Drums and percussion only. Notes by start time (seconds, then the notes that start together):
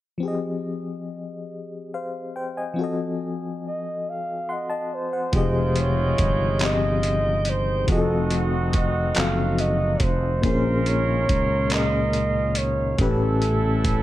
5.33 kick, closed hi-hat
5.76 closed hi-hat
6.18 kick, closed hi-hat
6.59 clap, closed hi-hat
7.03 closed hi-hat
7.45 closed hi-hat
7.88 kick, closed hi-hat
8.31 closed hi-hat
8.73 kick, closed hi-hat
9.15 clap, closed hi-hat
9.58 closed hi-hat
10.00 kick, closed hi-hat
10.43 kick, closed hi-hat
10.86 closed hi-hat
11.29 kick, closed hi-hat
11.70 clap, closed hi-hat
12.13 closed hi-hat
12.55 closed hi-hat
12.98 kick, closed hi-hat
13.42 closed hi-hat
13.85 kick, closed hi-hat